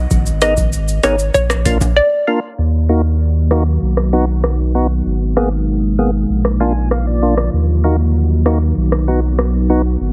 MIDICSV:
0, 0, Header, 1, 6, 480
1, 0, Start_track
1, 0, Key_signature, -6, "minor"
1, 0, Tempo, 618557
1, 84, Time_signature, 4, 2, 24, 8
1, 7859, End_track
2, 0, Start_track
2, 0, Title_t, "Synth pluck"
2, 0, Program_c, 0, 84
2, 326, Note_on_c, 0, 75, 80
2, 409, Note_off_c, 0, 75, 0
2, 803, Note_on_c, 0, 73, 82
2, 887, Note_off_c, 0, 73, 0
2, 1043, Note_on_c, 0, 73, 97
2, 1382, Note_off_c, 0, 73, 0
2, 1524, Note_on_c, 0, 74, 80
2, 1863, Note_off_c, 0, 74, 0
2, 7859, End_track
3, 0, Start_track
3, 0, Title_t, "Tonewheel organ"
3, 0, Program_c, 1, 16
3, 324, Note_on_c, 1, 59, 75
3, 324, Note_on_c, 1, 63, 74
3, 324, Note_on_c, 1, 70, 84
3, 325, Note_on_c, 1, 68, 69
3, 420, Note_off_c, 1, 59, 0
3, 420, Note_off_c, 1, 63, 0
3, 420, Note_off_c, 1, 68, 0
3, 420, Note_off_c, 1, 70, 0
3, 803, Note_on_c, 1, 59, 75
3, 804, Note_on_c, 1, 63, 67
3, 804, Note_on_c, 1, 68, 70
3, 804, Note_on_c, 1, 70, 83
3, 900, Note_off_c, 1, 59, 0
3, 900, Note_off_c, 1, 63, 0
3, 900, Note_off_c, 1, 68, 0
3, 900, Note_off_c, 1, 70, 0
3, 1284, Note_on_c, 1, 62, 73
3, 1285, Note_on_c, 1, 58, 76
3, 1285, Note_on_c, 1, 65, 71
3, 1286, Note_on_c, 1, 70, 82
3, 1380, Note_off_c, 1, 58, 0
3, 1380, Note_off_c, 1, 62, 0
3, 1381, Note_off_c, 1, 65, 0
3, 1381, Note_off_c, 1, 70, 0
3, 1765, Note_on_c, 1, 58, 81
3, 1765, Note_on_c, 1, 62, 70
3, 1765, Note_on_c, 1, 65, 73
3, 1766, Note_on_c, 1, 70, 86
3, 1860, Note_off_c, 1, 58, 0
3, 1860, Note_off_c, 1, 62, 0
3, 1860, Note_off_c, 1, 65, 0
3, 1861, Note_off_c, 1, 70, 0
3, 2244, Note_on_c, 1, 58, 83
3, 2244, Note_on_c, 1, 63, 78
3, 2245, Note_on_c, 1, 66, 91
3, 2340, Note_off_c, 1, 58, 0
3, 2340, Note_off_c, 1, 63, 0
3, 2340, Note_off_c, 1, 66, 0
3, 2724, Note_on_c, 1, 58, 82
3, 2724, Note_on_c, 1, 63, 77
3, 2725, Note_on_c, 1, 66, 89
3, 2820, Note_off_c, 1, 58, 0
3, 2820, Note_off_c, 1, 63, 0
3, 2820, Note_off_c, 1, 66, 0
3, 3203, Note_on_c, 1, 59, 87
3, 3205, Note_on_c, 1, 63, 77
3, 3205, Note_on_c, 1, 66, 90
3, 3300, Note_off_c, 1, 59, 0
3, 3300, Note_off_c, 1, 63, 0
3, 3300, Note_off_c, 1, 66, 0
3, 3684, Note_on_c, 1, 59, 81
3, 3685, Note_on_c, 1, 63, 79
3, 3685, Note_on_c, 1, 66, 94
3, 3780, Note_off_c, 1, 59, 0
3, 3781, Note_off_c, 1, 63, 0
3, 3781, Note_off_c, 1, 66, 0
3, 4164, Note_on_c, 1, 58, 82
3, 4164, Note_on_c, 1, 68, 92
3, 4165, Note_on_c, 1, 59, 76
3, 4260, Note_off_c, 1, 58, 0
3, 4260, Note_off_c, 1, 59, 0
3, 4260, Note_off_c, 1, 68, 0
3, 4645, Note_on_c, 1, 58, 82
3, 4646, Note_on_c, 1, 59, 75
3, 4646, Note_on_c, 1, 68, 92
3, 4740, Note_off_c, 1, 58, 0
3, 4741, Note_off_c, 1, 59, 0
3, 4741, Note_off_c, 1, 68, 0
3, 5124, Note_on_c, 1, 58, 81
3, 5125, Note_on_c, 1, 62, 77
3, 5125, Note_on_c, 1, 80, 72
3, 5126, Note_on_c, 1, 65, 92
3, 5220, Note_off_c, 1, 58, 0
3, 5220, Note_off_c, 1, 62, 0
3, 5221, Note_off_c, 1, 65, 0
3, 5348, Note_off_c, 1, 80, 0
3, 5366, Note_on_c, 1, 77, 67
3, 5477, Note_off_c, 1, 77, 0
3, 5486, Note_on_c, 1, 74, 63
3, 5605, Note_on_c, 1, 58, 87
3, 5606, Note_on_c, 1, 62, 78
3, 5606, Note_on_c, 1, 65, 99
3, 5701, Note_off_c, 1, 58, 0
3, 5701, Note_off_c, 1, 62, 0
3, 5701, Note_off_c, 1, 65, 0
3, 5820, Note_off_c, 1, 74, 0
3, 6084, Note_on_c, 1, 58, 84
3, 6084, Note_on_c, 1, 63, 77
3, 6085, Note_on_c, 1, 66, 90
3, 6180, Note_off_c, 1, 58, 0
3, 6180, Note_off_c, 1, 63, 0
3, 6180, Note_off_c, 1, 66, 0
3, 6564, Note_on_c, 1, 58, 81
3, 6564, Note_on_c, 1, 63, 74
3, 6565, Note_on_c, 1, 66, 91
3, 6660, Note_off_c, 1, 58, 0
3, 6660, Note_off_c, 1, 63, 0
3, 6661, Note_off_c, 1, 66, 0
3, 7044, Note_on_c, 1, 59, 83
3, 7045, Note_on_c, 1, 63, 78
3, 7046, Note_on_c, 1, 66, 95
3, 7140, Note_off_c, 1, 59, 0
3, 7140, Note_off_c, 1, 63, 0
3, 7141, Note_off_c, 1, 66, 0
3, 7523, Note_on_c, 1, 59, 88
3, 7524, Note_on_c, 1, 63, 82
3, 7524, Note_on_c, 1, 66, 95
3, 7620, Note_off_c, 1, 59, 0
3, 7620, Note_off_c, 1, 63, 0
3, 7620, Note_off_c, 1, 66, 0
3, 7859, End_track
4, 0, Start_track
4, 0, Title_t, "Ambient pad"
4, 0, Program_c, 2, 92
4, 2003, Note_on_c, 2, 54, 78
4, 2003, Note_on_c, 2, 66, 87
4, 3904, Note_off_c, 2, 54, 0
4, 3904, Note_off_c, 2, 66, 0
4, 3923, Note_on_c, 2, 58, 74
4, 5847, Note_on_c, 2, 51, 81
4, 5847, Note_on_c, 2, 54, 76
4, 6775, Note_off_c, 2, 58, 0
4, 7746, Note_off_c, 2, 51, 0
4, 7746, Note_off_c, 2, 54, 0
4, 7859, End_track
5, 0, Start_track
5, 0, Title_t, "Sub bass"
5, 0, Program_c, 3, 38
5, 84, Note_on_c, 3, 32, 118
5, 773, Note_off_c, 3, 32, 0
5, 805, Note_on_c, 3, 32, 98
5, 1010, Note_off_c, 3, 32, 0
5, 1043, Note_on_c, 3, 34, 104
5, 1352, Note_off_c, 3, 34, 0
5, 1403, Note_on_c, 3, 34, 86
5, 1506, Note_off_c, 3, 34, 0
5, 2004, Note_on_c, 3, 39, 83
5, 2933, Note_off_c, 3, 39, 0
5, 2964, Note_on_c, 3, 35, 80
5, 3893, Note_off_c, 3, 35, 0
5, 3923, Note_on_c, 3, 32, 84
5, 4853, Note_off_c, 3, 32, 0
5, 4884, Note_on_c, 3, 34, 80
5, 5813, Note_off_c, 3, 34, 0
5, 5845, Note_on_c, 3, 39, 87
5, 6773, Note_off_c, 3, 39, 0
5, 6803, Note_on_c, 3, 35, 88
5, 7733, Note_off_c, 3, 35, 0
5, 7764, Note_on_c, 3, 32, 81
5, 7859, Note_off_c, 3, 32, 0
5, 7859, End_track
6, 0, Start_track
6, 0, Title_t, "Drums"
6, 82, Note_on_c, 9, 82, 62
6, 84, Note_off_c, 9, 82, 0
6, 84, Note_on_c, 9, 36, 121
6, 84, Note_on_c, 9, 82, 69
6, 161, Note_off_c, 9, 36, 0
6, 161, Note_off_c, 9, 82, 0
6, 202, Note_on_c, 9, 82, 57
6, 204, Note_off_c, 9, 82, 0
6, 204, Note_on_c, 9, 82, 59
6, 281, Note_off_c, 9, 82, 0
6, 321, Note_on_c, 9, 82, 55
6, 323, Note_off_c, 9, 82, 0
6, 323, Note_on_c, 9, 42, 80
6, 323, Note_on_c, 9, 82, 54
6, 325, Note_on_c, 9, 37, 99
6, 400, Note_off_c, 9, 42, 0
6, 400, Note_off_c, 9, 82, 0
6, 402, Note_off_c, 9, 37, 0
6, 441, Note_on_c, 9, 82, 75
6, 443, Note_on_c, 9, 36, 96
6, 445, Note_off_c, 9, 82, 0
6, 445, Note_on_c, 9, 82, 77
6, 521, Note_off_c, 9, 36, 0
6, 522, Note_off_c, 9, 82, 0
6, 564, Note_on_c, 9, 82, 73
6, 565, Note_off_c, 9, 82, 0
6, 565, Note_on_c, 9, 82, 77
6, 643, Note_off_c, 9, 82, 0
6, 684, Note_on_c, 9, 82, 54
6, 685, Note_off_c, 9, 82, 0
6, 685, Note_on_c, 9, 82, 53
6, 763, Note_off_c, 9, 82, 0
6, 802, Note_on_c, 9, 42, 71
6, 802, Note_on_c, 9, 82, 52
6, 803, Note_off_c, 9, 82, 0
6, 803, Note_on_c, 9, 82, 61
6, 804, Note_on_c, 9, 37, 88
6, 880, Note_off_c, 9, 42, 0
6, 881, Note_off_c, 9, 37, 0
6, 881, Note_off_c, 9, 82, 0
6, 922, Note_on_c, 9, 82, 80
6, 923, Note_off_c, 9, 82, 0
6, 923, Note_on_c, 9, 82, 69
6, 1001, Note_off_c, 9, 82, 0
6, 1043, Note_on_c, 9, 36, 95
6, 1044, Note_on_c, 9, 82, 74
6, 1045, Note_off_c, 9, 82, 0
6, 1045, Note_on_c, 9, 82, 74
6, 1121, Note_off_c, 9, 36, 0
6, 1122, Note_off_c, 9, 82, 0
6, 1162, Note_on_c, 9, 37, 95
6, 1163, Note_on_c, 9, 82, 52
6, 1167, Note_off_c, 9, 82, 0
6, 1167, Note_on_c, 9, 82, 54
6, 1240, Note_off_c, 9, 37, 0
6, 1245, Note_off_c, 9, 82, 0
6, 1284, Note_on_c, 9, 36, 101
6, 1284, Note_on_c, 9, 42, 82
6, 1284, Note_on_c, 9, 82, 61
6, 1288, Note_off_c, 9, 82, 0
6, 1288, Note_on_c, 9, 82, 53
6, 1361, Note_off_c, 9, 36, 0
6, 1362, Note_off_c, 9, 42, 0
6, 1366, Note_off_c, 9, 82, 0
6, 1404, Note_on_c, 9, 36, 107
6, 1404, Note_on_c, 9, 82, 78
6, 1406, Note_off_c, 9, 82, 0
6, 1406, Note_on_c, 9, 65, 75
6, 1406, Note_on_c, 9, 82, 72
6, 1481, Note_off_c, 9, 36, 0
6, 1483, Note_off_c, 9, 65, 0
6, 1483, Note_off_c, 9, 82, 0
6, 2722, Note_on_c, 9, 37, 85
6, 2800, Note_off_c, 9, 37, 0
6, 3082, Note_on_c, 9, 37, 80
6, 3159, Note_off_c, 9, 37, 0
6, 3443, Note_on_c, 9, 37, 94
6, 3520, Note_off_c, 9, 37, 0
6, 4165, Note_on_c, 9, 37, 86
6, 4242, Note_off_c, 9, 37, 0
6, 5003, Note_on_c, 9, 37, 82
6, 5081, Note_off_c, 9, 37, 0
6, 5364, Note_on_c, 9, 37, 90
6, 5441, Note_off_c, 9, 37, 0
6, 5723, Note_on_c, 9, 37, 89
6, 5800, Note_off_c, 9, 37, 0
6, 6563, Note_on_c, 9, 37, 82
6, 6640, Note_off_c, 9, 37, 0
6, 6923, Note_on_c, 9, 37, 83
6, 7000, Note_off_c, 9, 37, 0
6, 7283, Note_on_c, 9, 37, 87
6, 7361, Note_off_c, 9, 37, 0
6, 7859, End_track
0, 0, End_of_file